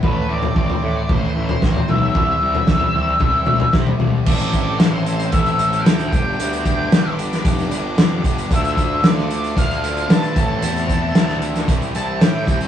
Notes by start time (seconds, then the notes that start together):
Already playing: E4
0.02 A1 A2 E3 A3 B4, kick, floor tom
0.29 A1 A2 E3 C4 D5
0.42 floor tom
0.56 A1 A2 E3 C4 D5, kick
0.70 floor tom
0.82 A2 E3 E4
1.09 A1 A2 E3 A3 B4 C5, kick, floor tom
1.35 A1 A2 E3 E4
1.49 floor tom
1.61 A1 A2 E3 C4, kick, snare
1.75 floor tom
1.88 B1 A2 E3 A3 E5, mid tom
2.15 C2 C3 E3 G3 E5, kick, floor tom
2.41 C2 C3 E3 G3 C4
2.55 floor tom
2.67 C2 C3 E3 G3, kick, snare
2.80 floor tom
2.94 C2 C3 E3 C4
3.20 C2 C3 E3 G3 E4, kick, floor tom
3.46 C2 C3 E3 C4, mid tom
3.60 floor tom
3.73 C3 E3 G3, kick, snare, mid tom
3.87 floor tom, mid tom
4.00 C2 C3 E3 G3, mid tom
4.26 A1 A2 E3 C4 E4 G4 A4 C5 D5 A5 E6, kick, crash
4.40 closed hi-hat
4.53 A2 E3 C4 E4 A4, kick, closed hi-hat
4.79 A1 A2 E3 C4 E4 A4 C5, snare, closed hi-hat
5.06 A2 E3 C4 E4 A4, closed hi-hat
5.20 closed hi-hat
5.31 A1 A2 E3 C4 E4 A4 E5, kick, closed hi-hat
5.46 closed hi-hat
5.59 A2 E3 C4 E4 A4, closed hi-hat
5.73 closed hi-hat
5.79 F5 G5
5.86 D2 A2 E3 C4 E4 A4, snare, closed hi-hat
5.99 closed hi-hat
6.09 G1 G2 D3 G4 D5 G5 B5 D6, kick, closed hi-hat
6.13 G3 B3 D4 G4
6.39 D2 G2 D3 G3 B3 D4 G4, closed hi-hat
6.53 closed hi-hat
6.65 G2 D3 G3 B3 D4 G4, kick, closed hi-hat
6.92 G1 G2 D3 G3 B3 D4 G4, snare, closed hi-hat
7.19 G2 D3 G3 B3 D4 G4, closed hi-hat
7.33 snare, closed hi-hat
7.45 F1 G2 D3 G3 B3 D4 G4, kick, closed hi-hat
7.58 closed hi-hat
7.71 G1 G2 D3 G3 B3 D4 G4, closed hi-hat
7.97 F2 G2 D3 G3 B3 D4 G4, snare, closed hi-hat
8.24 G1 G2 D3 G3 B3 D4 G4, kick, closed hi-hat
8.38 closed hi-hat
8.50 D2 D3 F3 A3 D4 F4 A4 A5 D6, kick, closed hi-hat
8.54 E5
8.64 closed hi-hat
8.76 D3 F3 A3 D4 F4 A4, kick, closed hi-hat
9.03 D2 D3 F3 A3 D4 F4 A4 D5, snare, closed hi-hat
9.18 snare
9.29 D3 F3 A3 D4 F4 A4, closed hi-hat
9.44 closed hi-hat
9.55 D2 D3 F3 A3 D4 F4 A4 F5, kick, closed hi-hat
9.71 closed hi-hat
9.82 D3 F3 A3 D4 F4 A4, closed hi-hat
9.97 closed hi-hat
10.08 G2 D3 F3 A3 D4 F4 A4 A5, snare, closed hi-hat
10.23 closed hi-hat
10.35 A1 A2 E3 A3 C4 E4 G4 A4 C5 A5 E6, kick, closed hi-hat
10.61 E2 A2 E3 A3 C4 E4 A4, closed hi-hat
10.76 closed hi-hat
10.88 A2 E3 A3 C4 E4 A4, kick, closed hi-hat
11.14 D2 A2 E3 A3 C4 E4 A4, snare, closed hi-hat
11.29 snare
11.41 A2 E3 A3 C4 E4 A4, closed hi-hat
11.55 snare, closed hi-hat
11.67 C2 C3 E3 G3 C4 E4 E5 C6, kick, closed hi-hat
11.82 closed hi-hat
11.93 C2 C3 E3 G3 C4 E4 A5, closed hi-hat
12.20 A2 C3 E3 G3 C4 E4 G5, snare, closed hi-hat
12.46 C2 C3 E3 G3 C4 E4, kick, closed hi-hat
12.61 closed hi-hat